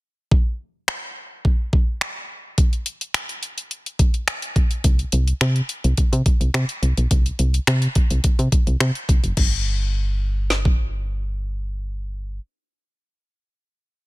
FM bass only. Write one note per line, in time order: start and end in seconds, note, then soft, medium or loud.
4.84 5.05 C2 loud
5.13 5.33 C2 medium
5.41 5.61 C3 medium
5.84 5.94 C2 medium
5.98 6.04 C3 soft
6.13 6.22 C3 loud
6.41 6.50 C2 medium
6.54 6.65 C3 loud
6.83 6.93 C2 medium
6.98 7.07 B1 medium
7.11 7.31 C2 loud
7.39 7.59 C2 medium
7.68 7.88 C3 loud
8.11 8.20 C2 loud
8.24 8.30 C3 soft
8.39 8.48 C3 medium
8.67 8.77 C2 loud
8.80 8.91 C3 loud
9.09 9.20 C2 medium
9.24 9.33 F#1 medium
9.37 12.40 G1 medium